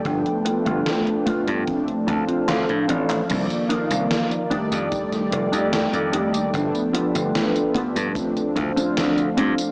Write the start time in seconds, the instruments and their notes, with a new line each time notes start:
Already playing: ambient pad A4 G5
0.04 slap bass G1, analog polysynth F3 A3 B3 D4, ambient pad F4 B4, kick, closed hi-hat
0.26 closed hi-hat
0.45 muted clean electric guitar stroke, closed hi-hat
0.65 slap bass G1, clean electric guitar A3 B3 F4, closed hi-hat
0.86 snare, closed hi-hat
1.07 closed hi-hat
1.26 clean electric guitar A3 B3 F4, kick, closed hi-hat
1.47 slap bass G2, closed hi-hat
1.66 analog polysynth F3 A3 C4 D4, ambient pad D4 A4 C5 F5, kick, closed hi-hat
1.88 closed hi-hat
2.07 slap bass D2, clean electric guitar A5, muted clean electric guitar stroke, kick, closed hi-hat
2.27 clean electric guitar C4 D4 F4, muted slap bass stroke, closed hi-hat
2.48 slap bass D2, clean electric guitar F5, snare, clap, closed hi-hat
2.69 slap bass A2, closed hi-hat
2.88 slap bass A1, clean electric guitar C4 D4 F4 D5, closed hi-hat
3.10 clap, closed hi-hat
3.28 slap bass C2, analog polysynth D#3 F3 A#3 D5, ambient pad D#3 A#4 D5 F5, kick, closed hi-hat, crash, tambourine
3.50 closed hi-hat, tambourine
3.69 clean electric guitar D4 D#4 F4 A#4, closed hi-hat
3.91 slap bass C2, closed hi-hat, tambourine
4.11 snare, closed hi-hat, tambourine
4.31 closed hi-hat, tambourine
4.50 analog polysynth D#3 G3 A3 D5, clean electric guitar D4 D#4 G4 A4, ambient pad A4 D5 G5, kick, closed hi-hat
4.72 slap bass F2, closed hi-hat, tambourine
4.92 kick, closed hi-hat, tambourine
5.12 snare, closed hi-hat, tambourine
5.32 slap bass F1, muted clean electric guitar stroke, closed hi-hat
5.52 slap bass F2, clean electric guitar D4 D#4 G4 A4, closed hi-hat, tambourine
5.73 snare, closed hi-hat, tambourine
5.93 slap bass F2, closed hi-hat, tambourine
6.12 clean electric guitar D4 D#4 G4 A4, closed hi-hat
6.34 slap bass D#2, closed hi-hat, tambourine
6.52 slap bass G1, analog polysynth F3 A3 B3 D4, ambient pad F4 B4, kick, closed hi-hat, tambourine
6.75 closed hi-hat, tambourine
6.93 clean electric guitar B3 F4 G4 A4, closed hi-hat
7.15 slap bass G1, closed hi-hat, tambourine
7.35 snare, closed hi-hat, tambourine
7.56 closed hi-hat, tambourine
7.75 clean electric guitar B3 F4 G4 A4, kick, closed hi-hat
7.96 slap bass G2, closed hi-hat, tambourine
8.14 analog polysynth F3 A3 C4 D4, ambient pad D4 C5 F5, kick, closed hi-hat, tambourine
8.37 closed hi-hat, tambourine
8.56 slap bass D2, muted clean electric guitar stroke, kick, closed hi-hat
8.76 clean electric guitar C4 D4 F4 A4, muted slap bass stroke, closed hi-hat, tambourine
8.97 slap bass D2, snare, closed hi-hat, tambourine
9.18 closed hi-hat, tambourine
9.37 slap bass G2, clean electric guitar C4 D4 F4 A4, closed hi-hat
9.58 closed hi-hat, tambourine